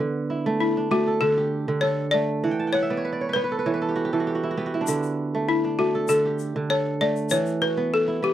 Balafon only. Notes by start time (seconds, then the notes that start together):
0.60 E4
0.91 F#4
1.21 A4
1.81 C#5
2.11 D5
2.73 C#5
3.33 B4
5.49 E4
5.79 F#4
6.09 A4
6.70 C#5
7.01 D5
7.31 C#5
7.62 B4
7.94 A4
8.24 G4